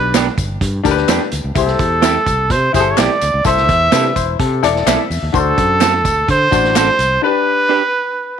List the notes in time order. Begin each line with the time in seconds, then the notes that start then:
Already playing: B1 D4 G4 B4
0.14 B3 D4 G4, snare, clap, closed hi-hat, tambourine
0.37 G1, kick, closed hi-hat, tambourine
0.61 G2, kick, closed hi-hat, tambourine
0.84 D2 D4 G4 A#4, kick, snare, closed hi-hat, tambourine
0.91 B4
0.97 snare
1.08 F2 B3 D4 G4, snare, clap, closed hi-hat, tambourine
1.31 D2, closed hi-hat, tambourine
1.44 C#2
1.55 C2 E4 G4 A4 C5, kick, closed hi-hat, tambourine
1.67 snare
1.79 E2, kick, closed hi-hat, tambourine
2.02 C4 E4 G4, snare, clap, closed hi-hat, tambourine
2.26 C2, kick, closed hi-hat, tambourine
2.50 C3 C5, kick, closed hi-hat, tambourine
2.73 G1 E4 G4 G#4 C5, kick, snare, closed hi-hat, tambourine
2.80 A4
2.91 C#5
2.97 B1 C4 E4 G4 D5, snare, clap, closed hi-hat, tambourine
3.21 D2, closed hi-hat, tambourine
3.34 C#2
3.44 C2 E4 A4 C5 E5, kick, closed hi-hat, tambourine
3.57 snare
3.69 E2, kick, closed hi-hat, tambourine
3.92 C3 C4 D4 E4 A4 B4, snare, clap, closed hi-hat, tambourine
4.16 E1 E4 C5, kick, closed hi-hat, tambourine
4.39 C3 C4 A4, kick, closed hi-hat
4.63 E1 E4 A4 D5, closed hi-hat, tambourine
4.76 snare
4.86 B1 C4 E4 A4 E5, snare, clap, closed hi-hat, tambourine
5.10 E2, open hi-hat, tambourine
5.22 D#2
5.33 D2 D4 F#4 C5, kick, closed hi-hat, tambourine
5.37 A4
5.58 F#2, kick, closed hi-hat, tambourine
5.80 C4 F#4 A4, snare, clap, closed hi-hat, tambourine
6.05 D2, kick, closed hi-hat, tambourine
6.28 D3 C5, kick, closed hi-hat, tambourine
6.51 A1 D4 F#4 C5, kick, closed hi-hat, tambourine
6.64 snare
6.75 C4 F#4 A4 C5, snare, clap, closed hi-hat, tambourine
6.99 C2, closed hi-hat, tambourine
7.22 D4 G4 B4
7.69 D4 G4 B4